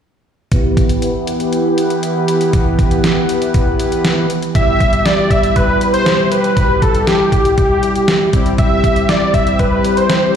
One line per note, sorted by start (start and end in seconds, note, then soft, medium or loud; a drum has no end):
0.52 4.51 E3 medium
0.52 4.51 B3 medium
0.52 4.26 B3 medium
0.52 4.26 E4 medium
0.52 4.26 G4 medium
0.52 4.51 G4 medium
0.52 4.26 B4 medium
0.52 kick loud
0.52 closed hi-hat medium
0.77 kick medium
0.77 closed hi-hat medium
0.89 closed hi-hat medium
1.02 closed hi-hat medium
1.27 closed hi-hat medium
1.40 closed hi-hat soft
1.53 closed hi-hat medium
1.78 closed hi-hat medium
1.90 closed hi-hat medium
2.03 closed hi-hat medium
2.28 closed hi-hat medium
2.41 closed hi-hat medium
2.53 kick loud
2.53 closed hi-hat medium
2.79 kick medium
2.79 closed hi-hat medium
2.91 closed hi-hat medium
3.04 snare medium
3.04 closed hi-hat medium
3.29 closed hi-hat medium
3.42 closed hi-hat soft
3.54 kick medium
3.54 closed hi-hat medium
3.80 closed hi-hat medium
3.92 closed hi-hat medium
4.05 snare loud
4.05 closed hi-hat medium
4.30 closed hi-hat medium
4.42 closed hi-hat medium
4.55 8.29 B2 medium
4.55 8.29 G3 medium
4.55 8.29 E4 medium
4.55 8.29 G4 medium
4.55 5.07 E5 loud
4.55 kick loud
4.55 closed hi-hat medium
4.80 kick medium
4.80 closed hi-hat medium
4.93 closed hi-hat medium
5.05 5.32 D5 loud
5.05 snare loud
5.05 closed hi-hat medium
5.30 5.57 E5 loud
5.30 kick medium
5.30 closed hi-hat medium
5.43 closed hi-hat soft
5.56 5.93 B4 loud
5.56 kick medium
5.56 closed hi-hat medium
5.81 closed hi-hat medium
5.94 6.29 C5 medium
5.94 closed hi-hat medium
6.06 snare loud
6.06 closed hi-hat medium
6.32 6.84 B4 loud
6.32 closed hi-hat medium
6.44 closed hi-hat medium
6.57 kick loud
6.57 closed hi-hat medium
6.82 7.09 A4 medium
6.82 kick medium
6.82 closed hi-hat medium
6.95 closed hi-hat medium
7.07 7.57 G4 medium
7.07 snare medium
7.07 closed hi-hat medium
7.32 kick medium
7.32 closed hi-hat medium
7.45 closed hi-hat soft
7.58 8.29 G4 medium
7.58 kick medium
7.58 closed hi-hat medium
7.83 closed hi-hat medium
7.96 closed hi-hat medium
8.08 snare loud
8.08 closed hi-hat medium
8.33 10.36 G3 medium
8.33 10.36 C4 medium
8.33 10.36 E4 medium
8.33 10.36 G4 medium
8.33 kick medium
8.33 closed hi-hat medium
8.46 closed hi-hat medium
8.58 9.11 E5 loud
8.58 kick loud
8.58 closed hi-hat medium
8.84 kick medium
8.84 closed hi-hat medium
8.96 closed hi-hat medium
9.09 9.36 D5 loud
9.09 snare loud
9.09 closed hi-hat medium
9.34 9.61 E5 loud
9.34 kick medium
9.34 closed hi-hat medium
9.47 closed hi-hat soft
9.59 9.99 B4 loud
9.59 kick medium
9.59 closed hi-hat medium
9.85 closed hi-hat medium
9.97 10.34 C5 medium
9.97 closed hi-hat medium
10.10 snare loud
10.10 closed hi-hat medium